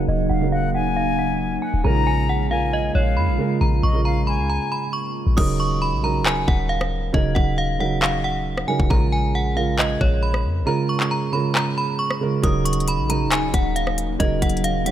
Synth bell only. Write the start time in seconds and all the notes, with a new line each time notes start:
0.09 D#5
0.29 F#5
0.52 F5
0.75 F#5
0.96 F5
1.19 F#5
1.62 G#5
1.84 A#5
2.07 G#5
2.29 F#5
2.51 F5
2.73 D#5
2.95 C#5
3.17 B5
3.61 A#5
3.83 C#6
4.05 A#5
4.27 B5
4.50 A#5
4.72 B5
4.93 C#6
5.37 D#6
5.60 C#6
5.82 B5
6.04 A#5
6.26 G#5
6.48 F#5
6.69 F5
7.14 D#5
7.35 F#5
7.58 F5
7.80 F#5
8.02 F5
8.24 F#5
8.68 G#5
8.90 A#5
9.12 G#5
9.35 F#5
9.57 F5
9.79 D#5
10.01 C#5
10.23 B5
10.67 A#5
10.89 C#6
11.11 A#5
11.33 B5
11.55 A#5
11.78 B5
11.99 C#6
12.44 D#6
12.65 C#6
12.88 B5
13.10 A#5
13.31 G#5
13.54 F#5
13.76 F5
14.20 D#5
14.42 F#5
14.64 F5
14.86 F#5